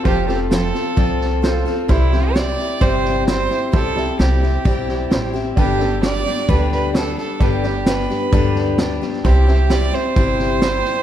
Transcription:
<<
  \new Staff \with { instrumentName = "Fiddle" } { \time 4/4 \key c \major \tempo 4 = 130 g'8 g'8 a'2~ a'8 r8 | e'4 d''4 c''4 c''4 | a'4 g'2~ g'8 r8 | g'4 d''4 b'8 b'8 a'8 a'8 |
g'4 b'2~ b'8 r8 | g'4 d''8 c''2~ c''8 | }
  \new Staff \with { instrumentName = "Upright piano" } { \time 4/4 \key c \major <f' a' c''>8 <f' a' c''>8 <f' a' c''>4 <f' a' d''>4 <f' a' c''>4 | <e' g' c''>8 <e' g' c''>8 <e' g' c''>4 <e' g' c''>4 <e' g' b''>4 | <e' g' c''>8 <e' g' d''>8 <e' g' d''>4 <e' g' d''>4 <e' g' c''>4 | <d' g' b'>8 <d' g' a'>8 <d' g' d''>4 <d' g' b'>4 <d' g' b'>4 |
<d' g' b'>8 <d' g' b'>8 <d' g' b'>4 <d' g' b'>4 <d' g' d''>4 | <e' g' c''>8 <e' g' c''>8 <e' g' c''>4 <e' g' c''>4 <e' g' b''>4 | }
  \new Staff \with { instrumentName = "Steel-string acoustic guitar" } { \time 4/4 \key c \major <f c' f' a'>8 <c' f' a'>8 <f c' f' a'>8 <c' f' a'>8 <f c' f' a'>4 <f c' f' a'>8 <c' f' a'>8 | <c g c' e' g'>8 <c' e' g'>8 <g c' e' g'>8 <c' e' g'>8 <c g c' e' g'>4 <g c' e' g'>8 <c' e' g'>8 | <c g c' e' g'>8 <c' e' g'>8 <g c' e' g'>8 <c' e' g'>8 <g c' e' g'>4 <g c' e' g'>8 <c' e' g'>8 | <g, d g b d' g'>8 <g b d' g'>8 <g b d' g'>8 <g b d' g'>8 <g, d g b d' g'>4 <g b d' g'>4 |
<g, d g b d' g'>8 <g b d' g'>8 <g b d' g'>8 <g b d' g'>8 <g, d g b d' g'>4 <g b d' g'>8 <g b d' g'>8 | <c g c' e' g'>8 <c' e' g'>8 <g c' e' g'>8 <c' e' g'>8 <c g c' e' g'>4 <g c' e' g'>4 | }
  \new Staff \with { instrumentName = "Upright bass" } { \clef bass \time 4/4 \key c \major f,,2 c,2 | c,2 g,,2 | c,4 c,4 b,,4 a,,4 | g,,2 d,2 |
g,,2 d,2 | c,2 g,,2 | }
  \new DrumStaff \with { instrumentName = "Drums" } \drummode { \time 4/4 <bd sn>8 sn8 <hhp sn>8 sn8 <bd sn>8 sn8 <hhp sn>8 sn8 | <bd sn>8 sn8 <hhp sn>8 sn8 <bd sn>8 sn8 <hhp sn>8 sn8 | <bd sn>8 sn8 <hhp sn>8 sn8 <bd sn>8 sn8 <hhp sn>8 sn8 | <bd sn>8 sn8 <hhp sn>8 sn16 sn16 <bd sn>8 sn8 <hhp sn>8 sn8 |
<bd sn>8 sn8 <hhp sn>8 sn8 <bd sn>8 sn8 <hhp sn>8 sn16 sn16 | <bd sn>8 sn8 <hhp sn>8 sn8 <bd sn>8 sn8 <hhp sn>8 sn8 | }
>>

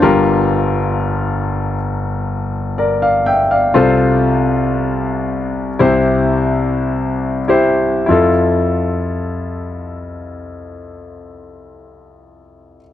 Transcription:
<<
  \new Staff \with { instrumentName = "Grand piano" } { \time 4/4 \key f \major \tempo 4 = 56 << { r2. <bes' d''>16 <d'' f''>16 <e'' g''>16 <d'' f''>16~ | <d'' f''>16 r2. r8. | r1 | } \\ { <f' g' bes'>2 r2 | <f' a' c''>2 <e' g' c''>4. <e' g' c''>8 | <e' f' a'>1 | } >> }
  \new Staff \with { instrumentName = "Grand piano" } { \clef bass \time 4/4 \key f \major <g,, g,>1 | <c, c>2 <c, c>2 | f,1 | }
>>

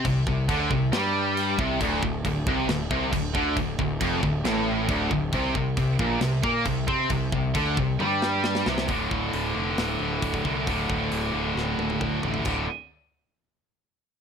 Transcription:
<<
  \new Staff \with { instrumentName = "Distorted electric guitar" } { \clef bass \time 4/4 \key c \mixolydian \tempo 4 = 136 c8 c8 d8 c8 g4. c8 | d,8 d,8 d,8 c8 d,8 c8 d,8 d8 | d,8 d,8 f,8 d,8 a,4 d,8 d,8 | c8 c8 c8 bes,8 c8 bes8 c8 c'8 |
c8 c8 d8 c8 g4. c8 | <d, a, d>4. <d, a, d>2~ <d, a, d>8 | <d, a, d>4. <d, a, d>2~ <d, a, d>8 | <d, a, d>8 r2. r8 | }
  \new Staff \with { instrumentName = "Distorted electric guitar" } { \clef bass \time 4/4 \key c \mixolydian c8 c8 d8 c8 g4. c8 | d,8 d,8 d,8 c8 d,8 c8 d,8 d8 | d,8 d,8 f,8 d,8 a,4 d,8 d,8 | c8 c8 c8 bes,8 c8 bes8 c8 c'8 |
c8 c8 d8 c8 g4. c8 | <d, a, d>2.~ <d, a, d>8 <d, a, d>8 | <d, a, d>2.~ <d, a, d>8 <d, a, d>8 | <d, a, d>8 r2. r8 | }
  \new Staff \with { instrumentName = "Distorted electric guitar" } { \clef bass \time 4/4 \key c \mixolydian c8 c8 d8 c8 g4. c8 | d,8 d,8 d,8 c8 d,8 c8 d,8 d8 | d,8 d,8 f,8 d,8 a,4 d,8 d,8 | c8 c8 c8 bes,8 c8 bes8 c8 c'8 |
c8 c8 d8 c8 g4. c8 | r1 | r1 | r1 | }
  \new Staff \with { instrumentName = "Picked electric bass" } { \clef bass \time 4/4 \key c \mixolydian c,8 c,8 d,8 c,8 g,4. c,8 | d,,8 d,,8 d,,8 c,8 d,,8 c,8 d,,8 d,8 | d,,8 d,,8 f,,8 d,,8 a,,4 d,,8 d,,8 | c,8 c,8 c,8 bes,,8 c,8 bes,8 c,8 c8 |
c,8 c,8 d,8 c,8 g,4. c,8 | d,,8 d,,8 d,,8 f,,8 d,,8 d,,8 d,,8 c,8 | d,,8 d,,8 d,,8 d,,8 d,,8 d,,8 d,,8 a,,8 | d,,8 r2. r8 | }
  \new DrumStaff \with { instrumentName = "Drums" } \drummode { \time 4/4 <cymc bd>8 bd8 <cymc bd>8 bd8 <cymc sn>4 cymc8 bd8 | <cymc bd>8 bd8 <cymc bd>8 bd8 <cymc sn>8 bd8 <cymc bd>8 bd8 | <cymc bd>8 bd8 <cymc bd>8 bd8 <cymc sn>4 <cymc bd>8 bd8 | <cymc bd>8 bd8 <cymc bd>8 bd8 <cymc sn>8 bd8 <cymc bd>8 bd8 |
<cymc bd>8 bd8 <cymc bd>8 bd8 tommh8 sn8 sn16 sn16 sn16 sn16 | <hho bd>8 bd8 hho4 <hho sn>4 <hho bd>16 bd16 bd8 | <hho bd>8 bd8 hho4 sn8 tommh16 tommh16 <bd toml>8 tomfh16 tomfh16 | <cymc bd>4 r4 r4 r4 | }
>>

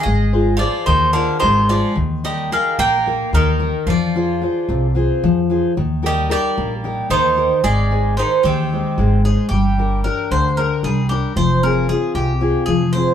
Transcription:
<<
  \new Staff \with { instrumentName = "Bouzouki" } { \time 7/8 \key g \phrygian \tempo 4 = 112 ees''4 d''8 c''8 bes'8 c''8 d''8 | r8 ees''8 f''8 g''4 bes'4 | d''2 r4. | r8 ees''8 d''4. c''4 |
d''4 c''8 g'4. aes'8 | g'4 bes'8 c''8 bes'8 aes'8 g'8 | c''8 bes'8 aes'8 g'4 aes'8 c''8 | }
  \new Staff \with { instrumentName = "Steel-string acoustic guitar" } { \time 7/8 \key g \phrygian aes8 <f' aes' c''>8 <f' aes' c''>8 ees8 <f' aes' c''>8 aes8 <f' aes' c''>8 | ees8 <ees' g' bes'>8 <ees' g' bes'>8 bes8 <ees' g' bes'>8 ees8 <ees' g' bes'>8 | f8 <f' aes' c''>8 <f' aes' c''>8 c8 <f' aes' c''>8 f8 <f' aes' c''>8 | ees8 <ees' g' bes'>8 <ees' g' bes'>8 bes8 <ees' g' bes'>8 ees8 <ees' g' bes'>8 |
aes8 <ees' aes' c''>8 <ees' aes' c''>8 ees8 <aes ees' c''>8 aes8 <ees' aes' c''>8 | g8 <d' g' bes'>8 <d' g' bes'>8 d8 <d' g' bes'>8 g8 <d' g' bes'>8 | f8 <c' f' aes'>8 <c' f' aes'>8 c8 <c' f' aes'>8 f8 <c' f' aes'>8 | }
  \new Staff \with { instrumentName = "Bouzouki" } { \clef bass \time 7/8 \key g \phrygian aes4 f8 ees8 d8 ees8 f8 | r8 g8 aes8 bes4 ees4 | f2 r4. | r8 g8 g4. ees4 |
aes4 ees8 c4. r8 | r2. r8 | r2. r8 | }
  \new Staff \with { instrumentName = "Upright bass" } { \clef bass \time 7/8 \key g \phrygian aes,,4. ees,4 aes,,4 | ees,4. bes,,4 ees,4 | f,4. c,4 f,4 | ees,4. bes,,4 ees,4 |
aes,,4. ees,4 aes,,4 | g,,4. d,4 c,4 | f,,4. c,4 f,,4 | }
>>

